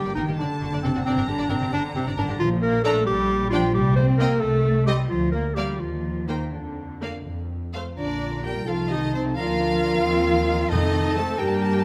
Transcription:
Already playing: clarinet G4, violin section G5
0.05 double bass section G1, viola section A#3, violin section D5
0.15 double bass section G1, cello section D#3, viola section A#3, clarinet D#4, violin section A#4
0.28 double bass section G1, viola section A#3, violin section G4
0.38 double bass section F#1, cello section D3, clarinet D4, viola section D4, violin section D5 A5
0.61 double bass section F#1, viola section D4, violin section F#4
0.73 double bass section F#1, viola section D4, violin section D5
0.82 double bass section F#1, cello section C3, clarinet C4, viola section D4, violin section A4
0.95 double bass section F#1, viola section D4, violin section F#4
1.05 double bass section G1, cello section C3, clarinet C4, viola section D4, violin section D5 A#5
1.17 double bass section G1, viola section D4, violin section A#4
1.28 double bass section G1, cello section D3, clarinet D4, viola section D4, violin section G4
1.38 double bass section G1, viola section D4, violin section D5
1.50 double bass section G1, cello section C3, clarinet C4, viola section D4, violin section A#4
1.61 double bass section G1, viola section D4, violin section G4
1.72 double bass section G1, cello section D3, viola section D4, clarinet D4, violin section D5
1.94 double bass section G1, cello section C3, clarinet C4, viola section D4, violin section G4
2.06 double bass section G1, viola section D4, violin section D5
2.17 double bass section G1, cello section D3, viola section D4, clarinet D4, violin section A#4
2.28 double bass section G1, viola section D4, violin section G4
2.39 double bass section A#1, timpani A#2, cello section F3, clarinet F4
2.62 cello section A#3, clarinet A#4
2.84 cello section A3, viola section D4, clarinet A4, violin section D5 A#5
3.06 double bass section A#1, cello section G3, clarinet G4
3.50 cello section F3, viola section D4, clarinet F4, violin section D5 G5
3.74 double bass section C2, cello section G3, clarinet G4
3.96 cello section C4, clarinet C5
4.18 cello section A#3, viola section C4, clarinet A#4, violin section D#5 G5
4.40 double bass section C2, cello section A3, clarinet A4
4.86 cello section G3, viola section C4, clarinet G4, violin section D#5
5.08 double bass section D2, cello section F3, clarinet F4
5.32 cello section A#3, clarinet A#4
5.55 cello section G3, viola section A#3, clarinet G4, violin section D5 F5
5.79 double bass section D#2, cello section F3, clarinet F4
6.28 cello section D#3, viola section A#3, clarinet D#4, violin section C5 G5
6.52 double bass section F2, cello section D3, clarinet D4
7.01 viola section A#3, violin section D5 F5
7.25 double bass section F2
7.74 viola section A3, violin section C5 F5
7.97 double bass section A#1, cello section D3, french horn section D4, violin section D4 D5, viola section D4, flute F4, clarinet F4, oboe A#5
8.09 violin section A#3
8.20 violin section D4
8.31 violin section A#3
8.42 cello section G3, violin section D4 G5, french horn section G4, viola section G4, flute A#4
8.54 violin section A#3
8.65 double bass section C2, cello section F3, violin section C4 F5, clarinet D#4, french horn section F4, viola section F4, flute A4, oboe A5
8.77 violin section A3
8.89 cello section D#3, violin section C4 D#5, french horn section D#4, viola section D#4, flute G4
9.02 violin section A3
9.14 cello section C3, french horn section C4, violin section C4 C5, viola section C4, flute D#4
9.26 violin section A3
9.36 double bass section D2, cello section F3, clarinet D4, violin section D4 F5, viola section F4, french horn section F4, flute A#4, oboe A#5
9.48 violin section A#3
9.60 violin section D4
9.72 violin section A#3
9.82 violin section D4
9.94 violin section A#3
10.03 double bass section D#2, clarinet C4, violin section D#4, oboe C6
10.14 violin section C4
10.26 violin section D#4
10.37 violin section C4
10.48 violin section D#4
10.60 violin section C4
10.69 double bass section F2, timpani F2, cello section D#3, violin section A3 D#5, clarinet C4, viola section D#4, french horn section D#4, flute A4, oboe A5
11.15 cello section A3, french horn section A4, viola section A4, flute C5, violin section A5
11.38 double bass section G2, cello section G3, violin section A#3 G5, clarinet D4, french horn section G4, viola section G4, flute A#4, oboe A#5
11.47 violin section A5
11.55 violin section G5
11.62 violin section A5
11.72 violin section G5
11.80 violin section A5

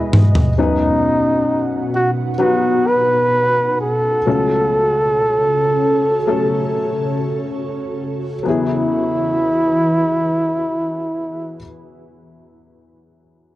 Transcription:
Already playing: ambient pad E2 B2 G#3 B4 D#5, felt piano E2 B2 G#3 B3 E4 F#4, flugelhorn E4
0.13 mid tom
0.35 floor tom
0.58 felt piano B1 F#2 F#3 B3 D#4 B4, ambient pad B2 B3 D#4 F#4 F#5, flugelhorn D#4
1.95 flugelhorn F#4
2.38 felt piano F#3 B3 D#4 B4, flugelhorn F#4
2.87 flugelhorn B4
3.81 flugelhorn A4
4.26 felt piano C#2 C#3 F#3 A3 C#4 A4, ambient pad C#3 C#4 A4 C#5
6.27 felt piano F#3 A3 C#4 A4
8.43 felt piano E2 F#3 B3, ambient pad E4 B4
8.47 ambient pad E3 F#4 G#4, felt piano E4 G#4, flugelhorn E4

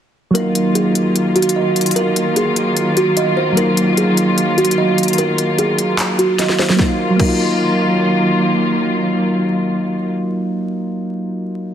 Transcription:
0.31 synth keys F#3 A#3
0.35 string section D#3 F#3 A#3 F4, synth keys D#4, kalimba A#4, closed hi-hat
0.40 synth keys F4
0.55 closed hi-hat
0.75 kalimba G#4, closed hi-hat
0.95 closed hi-hat
1.16 closed hi-hat
1.36 kalimba F#4, closed hi-hat
1.42 closed hi-hat
1.49 closed hi-hat
1.56 kalimba D#5
1.76 closed hi-hat
1.81 closed hi-hat
1.86 closed hi-hat
1.91 closed hi-hat
1.96 kalimba A#4, closed hi-hat
2.16 closed hi-hat
2.36 kalimba G#4, closed hi-hat
2.56 closed hi-hat
2.77 closed hi-hat
2.97 kalimba F#4, closed hi-hat
3.17 kalimba D#5, closed hi-hat
3.37 kalimba C5
3.52 synth keys F#3 A#3
3.57 synth keys D#4, kalimba A#4, closed hi-hat
3.61 synth keys F4
3.77 closed hi-hat
3.97 kalimba G#4, closed hi-hat
4.17 closed hi-hat
4.38 closed hi-hat
4.58 kalimba F#4, closed hi-hat
4.65 closed hi-hat
4.71 closed hi-hat
4.78 kalimba D#5
4.98 closed hi-hat
5.03 closed hi-hat
5.08 closed hi-hat
5.13 closed hi-hat
5.18 kalimba A#4, closed hi-hat
5.38 closed hi-hat
5.58 kalimba G#4, closed hi-hat
5.78 closed hi-hat
5.99 clap, closed hi-hat
6.19 kalimba F#4, closed hi-hat
6.39 kalimba D#5, snare, closed hi-hat
6.49 snare
6.59 kalimba C5, snare
6.69 synth keys F#3, snare
6.76 string section D#3 F#3 A#3 F4, synth keys A#3, kalimba A#4, kick, snare
6.82 synth keys D#4
6.88 synth keys F4
7.10 synth keys F#3
7.16 synth keys A#3, kalimba A#4, kick, crash
7.22 synth keys D#4
7.28 synth keys F4

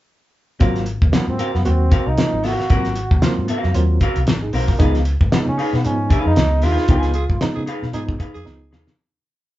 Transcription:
0.60 fingered electric bass G#1, reed electric piano F#3 A#3 C4 F4, clean electric guitar C4 F#4 A#4 F5, kick, closed hi-hat
0.76 snare, closed hi-hat
0.86 closed hi-hat
1.02 fingered electric bass D#2, kick
1.12 reed electric piano F#3 A#3 C4 F4, trombone B3, muted fingered electric bass stroke, snare, closed hi-hat
1.28 fingered electric bass G#2, trombone C4
1.38 clean electric guitar C4 F#4 A#4 F5, closed hi-hat
1.54 fingered electric bass F#2, trombone B3, snare
1.65 fingered electric bass D#2, reed electric piano F#3 A#3 C4 F#4, trombone C4, closed hi-hat
1.90 clean electric guitar C4 F#4 A#4 F5, kick, closed hi-hat
2.07 fingered electric bass C2, trombone D#4
2.18 reed electric piano F#3 A#3 C4 F4, muted fingered electric bass stroke, snare, closed hi-hat
2.33 fingered electric bass G#1
2.43 clean electric guitar C4 F#4 A#4 F5, trombone F#4, snare, open hi-hat
2.60 snare
2.70 fingered electric bass G#1, reed electric piano F#3 A#3 C4 F4, clean electric guitar C4 F#4 A#4 F#5, kick, closed hi-hat
2.85 snare, closed hi-hat
2.96 closed hi-hat
3.11 fingered electric bass D#2, kick
3.22 reed electric piano F#3 A#3 C4 F4, muted fingered electric bass stroke, snare, closed hi-hat
3.38 fingered electric bass G#2
3.48 clean electric guitar C4 F#4 A#4 F5, closed hi-hat
3.64 fingered electric bass F#2, snare
3.74 fingered electric bass D#2, reed electric piano F#3 A#3 C4 F4, closed hi-hat
4.01 clean electric guitar C4 F#4 A#4 F5, kick, closed hi-hat
4.16 fingered electric bass C2, closed hi-hat
4.27 fingered electric bass G#1, snare, closed hi-hat
4.42 reed electric piano D#4 G#4
4.53 fingered electric bass B1, clean electric guitar C4 F#4 A#4 F5, reed electric piano F#4 C5, snare, open hi-hat
4.68 reed electric piano F4 A#4, kick, snare
4.79 fingered electric bass C#2, reed electric piano F3 G#3 B3 D#4, clean electric guitar D#4 G#4 B4 F5, kick, closed hi-hat
4.95 snare, closed hi-hat
5.05 closed hi-hat
5.21 fingered electric bass G#2, kick
5.31 reed electric piano F3 G#3 B3 D#4, trombone B3, muted fingered electric bass stroke, snare, closed hi-hat
5.47 fingered electric bass C#3, trombone C#4
5.58 clean electric guitar D#4 G#4 B4 F5, open hi-hat
5.73 fingered electric bass B2, trombone B3, snare
5.84 fingered electric bass G#2, reed electric piano F3 G#3 B3 D#4, trombone C#4, closed hi-hat
6.10 clean electric guitar D#4 G#4 B4 F5, kick, closed hi-hat
6.26 fingered electric bass F2, trombone D#4
6.36 fingered electric bass C#2, reed electric piano F3 G#3 B3 D#4, snare, closed hi-hat
6.62 fingered electric bass D#2, clean electric guitar D#4 G#4 B4 F5, trombone F4, snare, open hi-hat
6.78 snare
6.88 fingered electric bass C#2, reed electric piano F3 G#3 B3 D#4, clean electric guitar D#4 G#4 B4 G#5, kick, closed hi-hat
7.03 snare, closed hi-hat
7.14 tenor saxophone G#4, closed hi-hat
7.30 fingered electric bass G#2, kick
7.41 reed electric piano F3 G#3 B3 D#4, muted fingered electric bass stroke, snare, closed hi-hat
7.55 fingered electric bass C#3, tenor saxophone G#4
7.66 clean electric guitar D#4 G#4 B4 F5, closed hi-hat
7.82 fingered electric bass B2, snare
7.93 fingered electric bass G#2, reed electric piano F3 G#3 B3 D#4, tenor saxophone G#4, closed hi-hat
8.09 kick
8.19 clean electric guitar D#4 G#4 B4 F5, kick, closed hi-hat
8.34 fingered electric bass F2, tenor saxophone G#4, closed hi-hat
8.45 fingered electric bass C#2, reed electric piano F3 G#3 B3 D#4, snare
8.71 fingered electric bass D#2, clean electric guitar D#4 G#4 B4 F5, snare
8.87 snare

